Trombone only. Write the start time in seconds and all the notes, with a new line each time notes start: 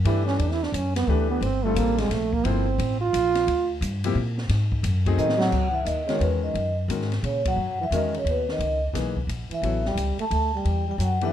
0.06 E4
0.27 C#4
0.40 D4
0.52 E4
0.63 D4
0.76 C#4
0.96 B3
1.09 A3
1.30 B3
1.43 C4
1.64 A3
1.77 A#3
1.99 G#3
2.12 A3
2.33 A#3
2.46 C4
3.01 F4
5.17 D#3
5.38 F#3
5.71 E3
5.84 D#3
6.06 C#3
6.18 B2
6.42 D#3
7.23 C#3
7.46 F#3
7.81 E3
7.92 D#3
8.14 C#3
8.27 B2
8.49 D#3
9.51 E3
9.85 G3
10.20 A3
10.32 A3
10.55 G3
10.88 G3
10.98 F#3
11.21 E3